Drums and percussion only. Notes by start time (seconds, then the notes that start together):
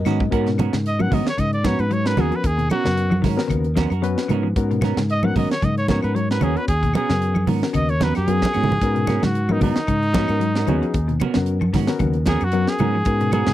0.05 closed hi-hat, claves, shekere
0.20 kick
0.32 kick, closed hi-hat
0.46 snare, closed hi-hat
0.58 closed hi-hat, high conga, low conga, claves
0.73 snare, closed hi-hat
0.86 closed hi-hat
0.99 high conga, claves
1.12 kick, open hi-hat, high conga, low conga
1.26 snare, closed hi-hat
1.38 kick, closed hi-hat, claves
1.53 closed hi-hat
1.64 kick, snare, closed hi-hat, high conga
1.79 closed hi-hat, claves
1.91 closed hi-hat
2.06 snare, closed hi-hat
2.17 snare, closed hi-hat, high conga, low conga, claves
2.32 closed hi-hat
2.44 kick, closed hi-hat
2.59 closed hi-hat
2.70 closed hi-hat, high conga, claves
2.85 snare, closed hi-hat
2.97 closed hi-hat
3.11 high conga, claves
3.24 kick, snare, open hi-hat, high conga, low conga
3.39 snare
3.50 kick, closed hi-hat, claves
3.64 closed hi-hat
3.77 kick, snare, closed hi-hat, high conga
3.90 closed hi-hat, claves
4.04 closed hi-hat
4.18 snare, closed hi-hat
4.29 closed hi-hat, low conga, claves
4.56 kick, closed hi-hat
4.71 closed hi-hat
4.81 snare, closed hi-hat, high conga, low conga, claves
4.97 snare, closed hi-hat
5.10 closed hi-hat
5.23 high conga, claves
5.36 kick, open hi-hat, high conga, low conga
5.51 snare, closed hi-hat
5.61 kick, closed hi-hat, high conga, claves
5.78 closed hi-hat
5.88 kick, snare, closed hi-hat, high conga, low conga
6.03 closed hi-hat, claves
6.16 closed hi-hat
6.31 snare, closed hi-hat
6.41 closed hi-hat, low conga, claves
6.57 closed hi-hat
6.68 kick, closed hi-hat
6.83 kick, closed hi-hat
6.94 closed hi-hat, high conga, claves
7.10 snare, closed hi-hat
7.22 closed hi-hat
7.35 high conga, claves
7.47 open hi-hat, high conga, low conga
7.63 snare
7.74 kick, closed hi-hat, claves
7.89 closed hi-hat
8.01 snare, closed hi-hat, high conga, low conga
8.15 snare, closed hi-hat, claves
8.28 closed hi-hat, high conga
8.42 kick, snare, closed hi-hat, high conga
8.53 closed hi-hat, claves
8.64 low conga
8.72 low conga
8.82 kick, closed hi-hat
8.96 closed hi-hat
9.07 snare, closed hi-hat, high conga, low conga, claves
9.23 snare, closed hi-hat, high conga
9.35 closed hi-hat
9.49 high conga, claves
9.61 kick, open hi-hat, high conga, low conga
9.76 snare, closed hi-hat
9.87 kick, closed hi-hat, claves
10.03 closed hi-hat
10.14 kick, snare, closed hi-hat, high conga
10.28 closed hi-hat, claves
10.41 closed hi-hat
10.55 snare, closed hi-hat
10.67 closed hi-hat, high conga, low conga, claves
10.83 closed hi-hat
10.94 kick, closed hi-hat
11.09 closed hi-hat
11.20 closed hi-hat, high conga, low conga, claves
11.34 snare, closed hi-hat, high conga
11.46 closed hi-hat
11.61 high conga, claves
11.74 kick, snare, open hi-hat, high conga, low conga
11.87 snare
11.99 kick, closed hi-hat, high conga, claves
12.13 closed hi-hat
12.26 kick, snare, closed hi-hat, high conga
12.41 closed hi-hat, claves
12.52 closed hi-hat
12.67 snare, closed hi-hat
12.79 closed hi-hat, low conga, claves
13.05 kick, closed hi-hat
13.21 closed hi-hat
13.32 closed hi-hat, high conga, claves
13.46 snare, closed hi-hat